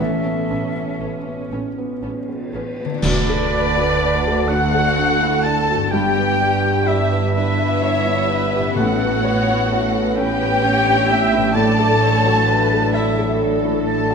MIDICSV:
0, 0, Header, 1, 13, 480
1, 0, Start_track
1, 0, Key_signature, 2, "major"
1, 0, Tempo, 1011804
1, 1433, Tempo, 967742
1, 1434, Time_signature, 6, 3, 24, 8
1, 2873, Tempo, 944882
1, 4793, Tempo, 921659
1, 7106, End_track
2, 0, Start_track
2, 0, Title_t, "Flute"
2, 0, Program_c, 0, 73
2, 0, Note_on_c, 0, 76, 81
2, 701, Note_off_c, 0, 76, 0
2, 1430, Note_on_c, 0, 74, 112
2, 2136, Note_off_c, 0, 74, 0
2, 2152, Note_on_c, 0, 78, 109
2, 2628, Note_on_c, 0, 81, 106
2, 2635, Note_off_c, 0, 78, 0
2, 2869, Note_off_c, 0, 81, 0
2, 2873, Note_on_c, 0, 79, 100
2, 3355, Note_on_c, 0, 76, 78
2, 3362, Note_off_c, 0, 79, 0
2, 3595, Note_off_c, 0, 76, 0
2, 3602, Note_on_c, 0, 76, 99
2, 4305, Note_off_c, 0, 76, 0
2, 4320, Note_on_c, 0, 78, 89
2, 4882, Note_off_c, 0, 78, 0
2, 5037, Note_on_c, 0, 79, 112
2, 5754, Note_on_c, 0, 81, 112
2, 5762, Note_off_c, 0, 79, 0
2, 6477, Note_on_c, 0, 76, 85
2, 6485, Note_off_c, 0, 81, 0
2, 6718, Note_off_c, 0, 76, 0
2, 6955, Note_on_c, 0, 81, 89
2, 7106, Note_off_c, 0, 81, 0
2, 7106, End_track
3, 0, Start_track
3, 0, Title_t, "Oboe"
3, 0, Program_c, 1, 68
3, 1436, Note_on_c, 1, 74, 102
3, 2156, Note_on_c, 1, 78, 106
3, 2164, Note_off_c, 1, 74, 0
3, 2632, Note_on_c, 1, 81, 99
3, 2639, Note_off_c, 1, 78, 0
3, 2866, Note_on_c, 1, 79, 103
3, 2874, Note_off_c, 1, 81, 0
3, 3353, Note_on_c, 1, 76, 85
3, 3361, Note_off_c, 1, 79, 0
3, 3590, Note_off_c, 1, 76, 0
3, 3594, Note_on_c, 1, 76, 91
3, 4300, Note_off_c, 1, 76, 0
3, 4314, Note_on_c, 1, 78, 80
3, 4878, Note_off_c, 1, 78, 0
3, 5033, Note_on_c, 1, 79, 110
3, 5756, Note_on_c, 1, 81, 108
3, 5764, Note_off_c, 1, 79, 0
3, 6482, Note_on_c, 1, 76, 81
3, 6490, Note_off_c, 1, 81, 0
3, 6721, Note_off_c, 1, 76, 0
3, 6965, Note_on_c, 1, 81, 85
3, 7106, Note_off_c, 1, 81, 0
3, 7106, End_track
4, 0, Start_track
4, 0, Title_t, "Violin section"
4, 0, Program_c, 2, 48
4, 241, Note_on_c, 2, 69, 50
4, 279, Note_off_c, 2, 69, 0
4, 478, Note_on_c, 2, 69, 43
4, 516, Note_off_c, 2, 69, 0
4, 716, Note_on_c, 2, 69, 52
4, 754, Note_off_c, 2, 69, 0
4, 958, Note_on_c, 2, 69, 47
4, 996, Note_off_c, 2, 69, 0
4, 1198, Note_on_c, 2, 69, 43
4, 1236, Note_off_c, 2, 69, 0
4, 1433, Note_on_c, 2, 74, 126
4, 2138, Note_off_c, 2, 74, 0
4, 2154, Note_on_c, 2, 78, 127
4, 2633, Note_off_c, 2, 78, 0
4, 2637, Note_on_c, 2, 81, 109
4, 2873, Note_off_c, 2, 81, 0
4, 2874, Note_on_c, 2, 79, 114
4, 3347, Note_off_c, 2, 79, 0
4, 3355, Note_on_c, 2, 76, 104
4, 3590, Note_off_c, 2, 76, 0
4, 3596, Note_on_c, 2, 76, 122
4, 4302, Note_off_c, 2, 76, 0
4, 4315, Note_on_c, 2, 78, 109
4, 5030, Note_on_c, 2, 79, 127
4, 5031, Note_off_c, 2, 78, 0
4, 5747, Note_on_c, 2, 81, 125
4, 5750, Note_off_c, 2, 79, 0
4, 6460, Note_off_c, 2, 81, 0
4, 6482, Note_on_c, 2, 76, 95
4, 6720, Note_off_c, 2, 76, 0
4, 6961, Note_on_c, 2, 81, 87
4, 7106, Note_off_c, 2, 81, 0
4, 7106, End_track
5, 0, Start_track
5, 0, Title_t, "Viola section"
5, 0, Program_c, 3, 48
5, 235, Note_on_c, 3, 59, 53
5, 236, Note_on_c, 3, 61, 48
5, 273, Note_off_c, 3, 59, 0
5, 274, Note_off_c, 3, 61, 0
5, 475, Note_on_c, 3, 61, 45
5, 476, Note_on_c, 3, 59, 44
5, 513, Note_off_c, 3, 61, 0
5, 514, Note_off_c, 3, 59, 0
5, 719, Note_on_c, 3, 59, 48
5, 720, Note_on_c, 3, 61, 51
5, 757, Note_off_c, 3, 59, 0
5, 758, Note_off_c, 3, 61, 0
5, 963, Note_on_c, 3, 59, 50
5, 963, Note_on_c, 3, 61, 48
5, 1001, Note_off_c, 3, 59, 0
5, 1001, Note_off_c, 3, 61, 0
5, 1207, Note_on_c, 3, 61, 50
5, 1208, Note_on_c, 3, 59, 54
5, 1245, Note_off_c, 3, 61, 0
5, 1246, Note_off_c, 3, 59, 0
5, 1439, Note_on_c, 3, 71, 94
5, 2141, Note_off_c, 3, 71, 0
5, 2160, Note_on_c, 3, 69, 71
5, 2873, Note_off_c, 3, 69, 0
5, 2879, Note_on_c, 3, 67, 79
5, 3584, Note_off_c, 3, 67, 0
5, 3605, Note_on_c, 3, 71, 79
5, 3832, Note_on_c, 3, 73, 84
5, 3839, Note_off_c, 3, 71, 0
5, 4074, Note_off_c, 3, 73, 0
5, 4076, Note_on_c, 3, 71, 95
5, 4315, Note_on_c, 3, 69, 82
5, 4316, Note_off_c, 3, 71, 0
5, 4550, Note_off_c, 3, 69, 0
5, 4554, Note_on_c, 3, 73, 86
5, 4790, Note_on_c, 3, 69, 72
5, 4791, Note_off_c, 3, 73, 0
5, 5030, Note_off_c, 3, 69, 0
5, 5036, Note_on_c, 3, 71, 80
5, 5271, Note_off_c, 3, 71, 0
5, 5274, Note_on_c, 3, 73, 85
5, 5512, Note_off_c, 3, 73, 0
5, 5512, Note_on_c, 3, 76, 89
5, 5752, Note_off_c, 3, 76, 0
5, 5757, Note_on_c, 3, 74, 82
5, 5990, Note_off_c, 3, 74, 0
5, 5993, Note_on_c, 3, 73, 82
5, 6234, Note_off_c, 3, 73, 0
5, 6236, Note_on_c, 3, 71, 77
5, 6478, Note_off_c, 3, 71, 0
5, 6479, Note_on_c, 3, 69, 94
5, 7106, Note_off_c, 3, 69, 0
5, 7106, End_track
6, 0, Start_track
6, 0, Title_t, "Violin section"
6, 0, Program_c, 4, 48
6, 1, Note_on_c, 4, 69, 68
6, 717, Note_off_c, 4, 69, 0
6, 1435, Note_on_c, 4, 62, 91
6, 2139, Note_off_c, 4, 62, 0
6, 2155, Note_on_c, 4, 66, 99
6, 2629, Note_on_c, 4, 69, 104
6, 2633, Note_off_c, 4, 66, 0
6, 2870, Note_off_c, 4, 69, 0
6, 2870, Note_on_c, 4, 67, 99
6, 3345, Note_off_c, 4, 67, 0
6, 3347, Note_on_c, 4, 64, 86
6, 3581, Note_off_c, 4, 64, 0
6, 3587, Note_on_c, 4, 64, 89
6, 4297, Note_off_c, 4, 64, 0
6, 4312, Note_on_c, 4, 66, 97
6, 5029, Note_off_c, 4, 66, 0
6, 5033, Note_on_c, 4, 67, 114
6, 5752, Note_off_c, 4, 67, 0
6, 5753, Note_on_c, 4, 69, 115
6, 6463, Note_off_c, 4, 69, 0
6, 6484, Note_on_c, 4, 64, 83
6, 6717, Note_off_c, 4, 64, 0
6, 6962, Note_on_c, 4, 69, 92
6, 7106, Note_off_c, 4, 69, 0
6, 7106, End_track
7, 0, Start_track
7, 0, Title_t, "Felt piano"
7, 0, Program_c, 5, 0
7, 0, Control_c, 5, 64, 127
7, 0, Note_on_c, 5, 33, 58
7, 3, Control_c, 5, 64, 0
7, 96, Control_c, 5, 64, 127
7, 115, Note_on_c, 5, 59, 45
7, 242, Note_on_c, 5, 61, 43
7, 306, Note_off_c, 5, 59, 0
7, 361, Note_on_c, 5, 59, 42
7, 429, Note_off_c, 5, 61, 0
7, 481, Note_on_c, 5, 71, 43
7, 548, Note_off_c, 5, 59, 0
7, 601, Note_on_c, 5, 59, 39
7, 669, Note_off_c, 5, 71, 0
7, 725, Note_on_c, 5, 61, 48
7, 790, Note_off_c, 5, 59, 0
7, 846, Note_on_c, 5, 59, 44
7, 913, Note_off_c, 5, 61, 0
7, 961, Note_on_c, 5, 61, 34
7, 1035, Note_off_c, 5, 59, 0
7, 1080, Note_off_c, 5, 61, 0
7, 1084, Note_on_c, 5, 59, 39
7, 1212, Note_on_c, 5, 71, 46
7, 1274, Note_off_c, 5, 59, 0
7, 1332, Note_on_c, 5, 59, 44
7, 1394, Note_off_c, 5, 71, 0
7, 1414, Note_off_c, 5, 33, 0
7, 1441, Note_off_c, 5, 59, 0
7, 1442, Control_c, 5, 64, 0
7, 1447, Note_on_c, 5, 38, 91
7, 1533, Control_c, 5, 64, 127
7, 1569, Note_on_c, 5, 69, 64
7, 1686, Note_on_c, 5, 74, 64
7, 1755, Note_off_c, 5, 69, 0
7, 1799, Note_on_c, 5, 66, 58
7, 1874, Note_off_c, 5, 74, 0
7, 1930, Note_on_c, 5, 74, 64
7, 1991, Note_off_c, 5, 66, 0
7, 2053, Note_on_c, 5, 69, 54
7, 2117, Note_off_c, 5, 74, 0
7, 2168, Note_on_c, 5, 62, 63
7, 2237, Note_off_c, 5, 69, 0
7, 2288, Note_on_c, 5, 69, 61
7, 2354, Note_off_c, 5, 62, 0
7, 2406, Note_on_c, 5, 62, 64
7, 2474, Note_off_c, 5, 69, 0
7, 2524, Note_on_c, 5, 64, 54
7, 2592, Note_off_c, 5, 62, 0
7, 2639, Note_off_c, 5, 64, 0
7, 2644, Note_on_c, 5, 62, 59
7, 2763, Note_on_c, 5, 66, 60
7, 2829, Note_off_c, 5, 62, 0
7, 2859, Note_off_c, 5, 38, 0
7, 2877, Note_off_c, 5, 66, 0
7, 2878, Note_on_c, 5, 43, 85
7, 2882, Control_c, 5, 64, 0
7, 2966, Control_c, 5, 64, 127
7, 3001, Note_on_c, 5, 71, 62
7, 3115, Note_on_c, 5, 74, 59
7, 3191, Note_off_c, 5, 71, 0
7, 3239, Note_on_c, 5, 67, 58
7, 3308, Note_off_c, 5, 74, 0
7, 3358, Note_on_c, 5, 74, 66
7, 3430, Note_off_c, 5, 67, 0
7, 3481, Note_on_c, 5, 71, 61
7, 3549, Note_off_c, 5, 74, 0
7, 3608, Note_on_c, 5, 62, 60
7, 3670, Note_off_c, 5, 71, 0
7, 3727, Note_on_c, 5, 71, 58
7, 3793, Note_off_c, 5, 62, 0
7, 3838, Note_on_c, 5, 62, 57
7, 3912, Note_off_c, 5, 71, 0
7, 3960, Note_on_c, 5, 64, 53
7, 4028, Note_off_c, 5, 62, 0
7, 4077, Note_off_c, 5, 64, 0
7, 4084, Note_on_c, 5, 62, 57
7, 4208, Note_on_c, 5, 67, 59
7, 4272, Note_off_c, 5, 62, 0
7, 4298, Note_off_c, 5, 43, 0
7, 4322, Note_off_c, 5, 67, 0
7, 4324, Control_c, 5, 64, 0
7, 4328, Note_on_c, 5, 45, 79
7, 4403, Control_c, 5, 64, 127
7, 4441, Note_on_c, 5, 71, 67
7, 4560, Note_on_c, 5, 73, 63
7, 4630, Note_off_c, 5, 71, 0
7, 4683, Note_on_c, 5, 64, 58
7, 4748, Note_off_c, 5, 73, 0
7, 4807, Note_on_c, 5, 73, 59
7, 4869, Note_off_c, 5, 64, 0
7, 4915, Note_on_c, 5, 71, 63
7, 4991, Note_off_c, 5, 73, 0
7, 5037, Note_on_c, 5, 61, 68
7, 5104, Note_off_c, 5, 71, 0
7, 5160, Note_on_c, 5, 71, 63
7, 5224, Note_off_c, 5, 61, 0
7, 5281, Note_on_c, 5, 61, 61
7, 5346, Note_off_c, 5, 71, 0
7, 5396, Note_on_c, 5, 62, 52
7, 5467, Note_off_c, 5, 61, 0
7, 5513, Note_off_c, 5, 62, 0
7, 5518, Note_on_c, 5, 61, 59
7, 5641, Note_on_c, 5, 64, 63
7, 5707, Note_off_c, 5, 61, 0
7, 5736, Note_off_c, 5, 45, 0
7, 5756, Note_off_c, 5, 64, 0
7, 5759, Note_on_c, 5, 45, 84
7, 5760, Control_c, 5, 64, 0
7, 5852, Control_c, 5, 64, 127
7, 5881, Note_on_c, 5, 69, 63
7, 6009, Note_on_c, 5, 74, 58
7, 6069, Note_off_c, 5, 69, 0
7, 6121, Note_on_c, 5, 66, 60
7, 6194, Note_off_c, 5, 74, 0
7, 6248, Note_on_c, 5, 74, 55
7, 6310, Note_off_c, 5, 66, 0
7, 6370, Note_on_c, 5, 69, 61
7, 6435, Note_off_c, 5, 74, 0
7, 6488, Note_on_c, 5, 62, 64
7, 6557, Note_off_c, 5, 69, 0
7, 6609, Note_on_c, 5, 69, 61
7, 6676, Note_off_c, 5, 62, 0
7, 6732, Note_on_c, 5, 62, 58
7, 6795, Note_off_c, 5, 69, 0
7, 6848, Note_on_c, 5, 64, 52
7, 6915, Note_off_c, 5, 62, 0
7, 6961, Note_off_c, 5, 64, 0
7, 6964, Note_on_c, 5, 62, 61
7, 7084, Note_on_c, 5, 66, 65
7, 7106, Note_off_c, 5, 45, 0
7, 7106, Note_off_c, 5, 62, 0
7, 7106, Note_off_c, 5, 66, 0
7, 7106, End_track
8, 0, Start_track
8, 0, Title_t, "French horn section"
8, 0, Program_c, 6, 60
8, 1429, Note_on_c, 6, 57, 85
8, 1431, Note_on_c, 6, 66, 89
8, 2850, Note_off_c, 6, 57, 0
8, 2851, Note_off_c, 6, 66, 0
8, 2865, Note_on_c, 6, 59, 88
8, 2869, Note_on_c, 6, 62, 81
8, 4294, Note_off_c, 6, 62, 0
8, 4314, Note_on_c, 6, 61, 88
8, 5667, Note_off_c, 6, 59, 0
8, 5667, Note_off_c, 6, 61, 0
8, 5755, Note_on_c, 6, 62, 88
8, 5756, Note_on_c, 6, 54, 80
8, 7106, Note_off_c, 6, 54, 0
8, 7106, Note_off_c, 6, 62, 0
8, 7106, End_track
9, 0, Start_track
9, 0, Title_t, "Harp"
9, 0, Program_c, 7, 46
9, 0, Note_on_c, 7, 45, 51
9, 0, Note_on_c, 7, 59, 43
9, 0, Note_on_c, 7, 61, 47
9, 0, Note_on_c, 7, 71, 41
9, 1351, Note_on_c, 7, 50, 74
9, 1373, Note_on_c, 7, 57, 60
9, 1395, Note_on_c, 7, 62, 60
9, 1411, Note_off_c, 7, 45, 0
9, 1415, Note_on_c, 7, 66, 53
9, 1422, Note_off_c, 7, 59, 0
9, 1433, Note_off_c, 7, 61, 0
9, 1443, Note_off_c, 7, 71, 0
9, 2785, Note_on_c, 7, 43, 70
9, 2807, Note_on_c, 7, 59, 58
9, 2823, Note_off_c, 7, 62, 0
9, 2829, Note_on_c, 7, 62, 53
9, 2848, Note_off_c, 7, 50, 0
9, 2854, Note_on_c, 7, 67, 55
9, 2860, Note_off_c, 7, 57, 0
9, 2881, Note_off_c, 7, 66, 0
9, 4224, Note_on_c, 7, 45, 68
9, 4242, Note_off_c, 7, 59, 0
9, 4248, Note_on_c, 7, 59, 59
9, 4271, Note_on_c, 7, 61, 54
9, 4290, Note_off_c, 7, 43, 0
9, 4293, Note_on_c, 7, 64, 52
9, 4313, Note_off_c, 7, 62, 0
9, 4326, Note_off_c, 7, 67, 0
9, 5655, Note_off_c, 7, 45, 0
9, 5661, Note_on_c, 7, 45, 74
9, 5685, Note_on_c, 7, 54, 59
9, 5709, Note_on_c, 7, 62, 60
9, 5732, Note_on_c, 7, 66, 54
9, 5735, Note_off_c, 7, 59, 0
9, 5747, Note_off_c, 7, 61, 0
9, 5758, Note_off_c, 7, 64, 0
9, 7106, Note_off_c, 7, 45, 0
9, 7106, Note_off_c, 7, 54, 0
9, 7106, Note_off_c, 7, 62, 0
9, 7106, Note_off_c, 7, 66, 0
9, 7106, End_track
10, 0, Start_track
10, 0, Title_t, "Timpani"
10, 0, Program_c, 8, 47
10, 1437, Note_on_c, 8, 50, 95
10, 2140, Note_off_c, 8, 50, 0
10, 4313, Note_on_c, 8, 45, 81
10, 5009, Note_off_c, 8, 45, 0
10, 7106, End_track
11, 0, Start_track
11, 0, Title_t, "Cello section"
11, 0, Program_c, 10, 48
11, 0, Note_on_c, 10, 61, 62
11, 1078, Note_off_c, 10, 61, 0
11, 1436, Note_on_c, 10, 38, 87
11, 2854, Note_off_c, 10, 38, 0
11, 2872, Note_on_c, 10, 43, 83
11, 4295, Note_off_c, 10, 43, 0
11, 4321, Note_on_c, 10, 45, 90
11, 7106, Note_off_c, 10, 45, 0
11, 7106, End_track
12, 0, Start_track
12, 0, Title_t, "Double bass section"
12, 0, Program_c, 11, 48
12, 236, Note_on_c, 11, 33, 61
12, 274, Note_off_c, 11, 33, 0
12, 476, Note_on_c, 11, 33, 55
12, 514, Note_off_c, 11, 33, 0
12, 717, Note_on_c, 11, 33, 61
12, 755, Note_off_c, 11, 33, 0
12, 960, Note_on_c, 11, 33, 55
12, 997, Note_off_c, 11, 33, 0
12, 1203, Note_on_c, 11, 33, 53
12, 1241, Note_off_c, 11, 33, 0
12, 1436, Note_on_c, 11, 38, 91
12, 2854, Note_off_c, 11, 38, 0
12, 2873, Note_on_c, 11, 31, 83
12, 4296, Note_off_c, 11, 31, 0
12, 4319, Note_on_c, 11, 33, 90
12, 7106, Note_off_c, 11, 33, 0
12, 7106, End_track
13, 0, Start_track
13, 0, Title_t, "Drums"
13, 1435, Note_on_c, 9, 35, 89
13, 1435, Note_on_c, 9, 49, 81
13, 1485, Note_off_c, 9, 35, 0
13, 1485, Note_off_c, 9, 49, 0
13, 7106, End_track
0, 0, End_of_file